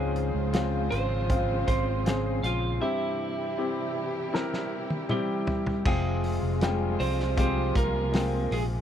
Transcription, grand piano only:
0.00 0.87 G#2 medium
0.00 0.49 C4 medium
0.00 0.50 C#4 medium
0.00 0.50 F4 medium
0.53 1.26 C#3 medium
0.53 1.25 C4 medium
0.53 1.26 F4 medium
1.29 2.02 C#3 medium
1.29 2.01 C4 medium
1.29 2.02 F4 medium
2.05 2.78 C#3 medium
2.05 2.78 C4 medium
2.05 2.78 G#4 medium
2.81 3.91 G2 medium
2.81 3.53 C4 medium
2.81 3.54 E4 medium
2.81 3.54 G4 medium
3.57 4.29 C4 medium
3.57 4.30 E4 medium
3.57 4.30 G4 medium
4.33 5.05 C4 medium
4.33 5.06 E4 medium
4.33 5.06 A#4 medium
5.09 5.81 C4 medium
5.09 5.81 E4 medium
5.09 5.82 G4 medium
5.85 6.96 C3 medium
5.85 6.57 G#3 medium
5.85 6.58 C4 medium
5.85 6.58 F4 medium
5.85 6.58 G5 medium
6.62 6.68 G3 medium
6.62 7.34 C4 medium
6.62 7.34 F4 medium
6.62 7.34 G5 medium
6.68 7.35 G#3 medium
7.37 8.09 G#3 medium
7.37 8.09 C4 medium
7.37 8.09 F4 medium
7.37 8.10 G4 medium
8.13 8.81 G#3 medium
8.13 8.81 C4 medium
8.13 8.81 F4 medium
8.13 8.81 G5 medium

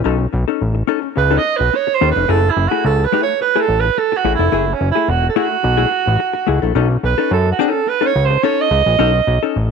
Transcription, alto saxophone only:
1.18 1.39 B4 medium
1.38 1.58 D#5 loud
1.57 1.77 B4 medium
1.76 1.96 C#5 loud
1.95 2.11 C5 loud
2.11 2.31 B4 medium
2.30 2.52 A4 loud
2.50 2.70 E4 medium
2.68 2.85 F#4 medium
2.86 3.06 A4 loud
3.04 3.22 B4 medium
3.23 3.40 C#5 loud
3.42 3.62 B4 loud
3.60 3.81 A4 loud
3.80 4.00 B4 medium
3.98 4.18 A4 loud
4.17 4.34 F#4 medium
4.35 4.75 E4 medium
4.74 4.90 C#4 medium
4.91 5.11 E4 medium
5.10 5.29 F#4 medium
5.29 5.38 A4 medium
5.37 6.76 F#4 loud
7.05 7.30 B4 medium
7.33 7.50 A4 medium
7.52 7.71 F#4 medium
7.69 7.90 A4 loud
7.89 8.08 B4 loud
8.07 8.26 C#5 loud
8.25 8.45 C5 loud
8.43 8.63 C#5 loud
8.61 9.46 D#5 loud

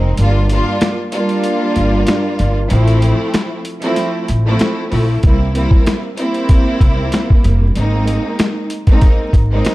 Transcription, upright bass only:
0.00 0.13 F1 medium
0.18 0.59 G1 loud
1.76 2.02 G1 medium
2.40 2.65 G1 medium
2.71 3.11 A1 loud
4.29 4.55 A1 medium
4.92 5.18 A#1 medium
5.24 5.64 C2 loud
6.81 7.07 C2 medium
7.45 7.71 F1 medium
7.77 8.17 G#1 loud
9.33 9.60 G#1 medium

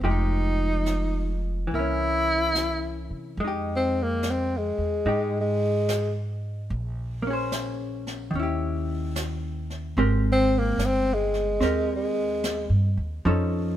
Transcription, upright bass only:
0.01 1.65 F1 medium
1.71 3.07 C2 medium
3.10 3.37 C3 soft
3.37 4.72 F2 medium
4.78 5.04 E2 medium
5.05 6.66 G#2 medium
6.70 8.29 A#1 medium
8.34 9.92 D#2 medium
9.97 10.74 G#1 medium
10.78 11.56 G1 medium
11.60 12.66 D#2 medium
12.69 12.95 G2 medium
12.97 13.23 D#2 medium
13.25 13.77 F2 medium

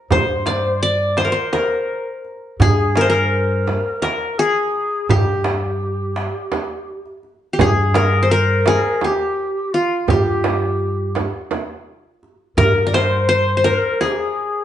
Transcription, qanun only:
0.00 0.15 A#4 medium
0.12 1.17 C5 loud
0.46 0.82 D5 medium
0.83 1.81 D5 loud
1.18 1.32 C5 medium
1.25 1.52 A#4 medium
1.32 2.38 C5 medium
1.53 2.66 A#4 medium
2.62 3.83 G#4 loud
2.97 3.09 A#4 loud
3.01 4.07 C5 medium
3.10 4.02 A#4 loud
4.02 5.16 A#4 medium
4.39 5.16 G#4 loud
5.10 7.20 G4 medium
7.53 7.67 G4 medium
7.61 8.67 G#4 loud
7.95 8.31 A#4 medium
8.23 9.28 C5 medium
8.31 9.45 A#4 loud
8.67 9.10 G#4 loud
9.04 10.10 G4 medium
9.74 11.09 F4 medium
10.10 11.48 G4 medium
12.58 12.86 A#4 loud
12.87 13.64 A#4 medium
12.94 13.28 C5 loud
13.29 13.57 C5 loud
13.57 14.63 C5 medium
13.64 14.64 A#4 loud
14.01 14.64 G#4 medium

